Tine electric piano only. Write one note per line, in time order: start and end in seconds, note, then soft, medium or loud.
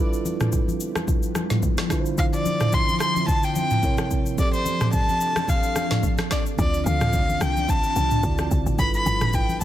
0.00 1.86 G3 medium
0.00 1.86 D4 medium
0.00 1.87 E4 medium
0.00 1.87 F4 medium
0.00 1.88 A4 medium
0.00 1.88 B4 medium
1.88 3.78 D3 medium
1.88 3.79 D4 medium
1.88 3.79 E4 medium
1.88 3.80 F4 medium
1.93 1.99 B4 medium
2.00 3.84 C5 medium
3.82 4.38 C3 medium
3.82 4.36 C4 medium
3.82 4.38 E4 medium
3.82 4.39 A#4 medium
3.82 4.39 C#5 medium
4.36 6.53 F3 medium
4.36 6.54 C4 medium
4.36 6.55 G4 medium
4.36 6.55 A4 medium
4.41 6.56 D5 medium
6.56 8.19 D3 medium
6.56 8.20 C4 medium
6.56 8.20 D4 medium
6.56 8.21 F4 medium
6.61 8.22 D5 medium
8.23 8.78 D3 medium
8.23 8.79 C4 medium
8.23 8.77 E4 medium
8.23 8.79 F#4 medium
8.23 8.79 D5 medium
8.77 9.64 G3 medium
8.77 9.64 D4 medium
8.77 9.64 E4 medium
8.77 9.64 F4 medium
8.77 9.64 A4 medium
8.82 9.64 B4 medium